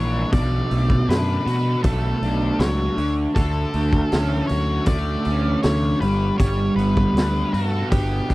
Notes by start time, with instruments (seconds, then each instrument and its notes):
Already playing: picked electric bass A#1, overdriven electric guitar E3 B3 D4 G4, lead electric guitar C#5
0.31 picked electric bass B1, overdriven electric guitar B2, lead electric guitar D5, kick, open hi-hat
0.70 picked electric bass B1, overdriven electric guitar A3, open hi-hat
0.90 kick
1.07 picked electric bass F#2, overdriven electric guitar D4, lead electric guitar B4, snare, open hi-hat
1.46 picked electric bass B2, overdriven electric guitar F#4, open hi-hat
1.83 picked electric bass B1, overdriven electric guitar A3, lead electric guitar A4, kick, open hi-hat
2.22 picked electric bass B1, overdriven electric guitar D4, open hi-hat
2.59 picked electric bass C#2, overdriven electric guitar F#3, lead electric guitar C#5, snare, open hi-hat
2.97 picked electric bass D2, overdriven electric guitar D3, open hi-hat
3.35 picked electric bass D2, overdriven electric guitar D3, lead electric guitar A4, kick, open hi-hat
3.74 picked electric bass D2, overdriven electric guitar A3, open hi-hat
3.93 kick
4.12 picked electric bass D2, overdriven electric guitar C#4, snare, open hi-hat
4.47 picked electric bass D2, overdriven electric guitar F#4, lead electric guitar C#5, open hi-hat
4.86 picked electric bass D2, overdriven electric guitar A3, lead electric guitar D5, kick, open hi-hat
5.25 picked electric bass D2, overdriven electric guitar C#4, open hi-hat
5.63 picked electric bass D2, overdriven electric guitar D3, lead electric guitar C#5, snare, open hi-hat
6.01 picked electric bass G1, overdriven electric guitar G3, lead electric guitar B4, open hi-hat
6.38 picked electric bass G1, overdriven electric guitar G3, lead electric guitar C#5, kick, open hi-hat
6.76 picked electric bass G1, overdriven electric guitar B3, lead electric guitar B4, open hi-hat
6.97 kick
7.13 picked electric bass D2, overdriven electric guitar D4, open hi-hat
7.17 snare
7.53 picked electric bass G2, overdriven electric guitar F#4, lead electric guitar A4, open hi-hat
7.90 picked electric bass G1, overdriven electric guitar B3, lead electric guitar G4, kick, open hi-hat
8.29 picked electric bass G1, overdriven electric guitar D4, kick, open hi-hat